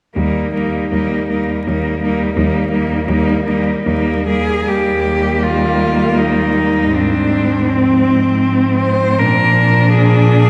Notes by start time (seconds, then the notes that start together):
0.15 D#2 G3 A#3 D#4
0.53 G3 A#3 D#4
0.91 D#2 G3 A#3 D#4
1.28 G3 A#3 D#4
1.65 D#2 G3 A#3 D#4
2.02 G3 A#3 D#4
2.34 D#2 G3 A#3 D#4
2.71 G3 A#3 D#4
3.07 D#2 G3 A#3 D#4
3.45 G3 A#3 D#4
3.86 D#2 G3 A#3 D#4
4.27 G3 A#3 G#4
4.68 D#2 G3 A#3 G4
5.43 F4
6.18 D#4
6.94 G#2 C4 D4
7.70 F3 C4
8.81 C5
9.19 A#2 D4 A#4
9.92 G#4